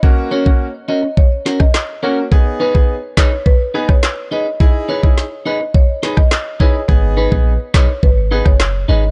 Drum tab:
CP |------------x---|------x-----x---|------------x---|------x-----x---|
SD |----------oro---|------o----ro---|----o-----oro---|------o----ro---|
BD |o--o----o--o----|o--o--o-o--o----|o--o----o--o--o-|o--o--o-o--o----|